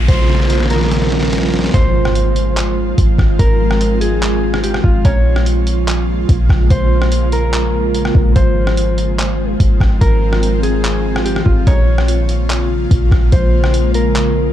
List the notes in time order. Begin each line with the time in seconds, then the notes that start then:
Already playing: C#3 F3 G#3 A#3 F4, noise sweep
0.08 A#1 C5, kick, snare, closed hi-hat
0.14 snare
0.19 snare
0.24 snare
0.30 snare
0.35 snare
0.40 snare
0.45 snare
0.50 snare, closed hi-hat
0.55 snare
0.60 snare
0.66 snare
0.70 A#4, snare, closed hi-hat
0.76 snare
0.81 snare
0.86 snare
0.91 snare, closed hi-hat
0.97 snare
1.02 snare
1.07 snare
1.12 snare
1.17 snare
1.23 snare
1.28 snare
1.33 snare, closed hi-hat
1.38 snare
1.43 snare
1.48 snare
1.54 snare
1.59 snare
1.64 snare
1.69 snare
1.74 G#1 D#3 F3 G#3 C4 F4 C5, kick, closed hi-hat, impact
2.05 cross-stick
2.15 closed hi-hat
2.36 closed hi-hat
2.57 clap, closed hi-hat
2.98 G#1, kick, closed hi-hat
3.18 G#1, kick, cross-stick
3.39 G#1 A#4, kick, closed hi-hat
3.71 cross-stick
3.81 closed hi-hat
4.01 G#4, closed hi-hat
4.22 clap, closed hi-hat
4.54 cross-stick
4.64 G4, closed hi-hat
4.74 cross-stick
4.84 G#1 F4, kick
5.05 A#1 C#3 F3 G#3 A#3 C#4 F4 A#4 C#5, kick, closed hi-hat
5.36 cross-stick
5.46 closed hi-hat
5.67 closed hi-hat
5.88 clap, closed hi-hat
6.29 A#1, kick, closed hi-hat
6.49 A#1, kick, cross-stick
6.70 A#1 C5, kick, closed hi-hat
7.02 cross-stick
7.12 closed hi-hat
7.32 A#4, closed hi-hat
7.53 clap, closed hi-hat
7.95 closed hi-hat
8.05 cross-stick
8.15 A#1, kick
8.36 G#1 D#3 C4 F4 C5, kick, closed hi-hat
8.67 cross-stick
8.77 closed hi-hat
8.98 closed hi-hat
9.19 clap, closed hi-hat
9.60 G#1, kick, closed hi-hat
9.80 G#1, kick, cross-stick
10.01 G#1 A#4, kick, closed hi-hat
10.33 cross-stick
10.43 closed hi-hat
10.63 G#4, closed hi-hat
10.84 clap, closed hi-hat
11.16 cross-stick
11.25 G4, closed hi-hat
11.36 cross-stick
11.46 G#1 F4, kick
11.67 A#1 C#3 G#3 A#3 C#4 F4 A#4 C#5, kick, closed hi-hat
11.98 cross-stick
12.08 closed hi-hat
12.29 closed hi-hat
12.50 clap, closed hi-hat
12.91 A#1, kick, closed hi-hat
13.11 A#1, kick, cross-stick
13.32 A#1 C5, kick, closed hi-hat
13.64 cross-stick
13.74 closed hi-hat
13.94 A#4, closed hi-hat
14.16 clap, closed hi-hat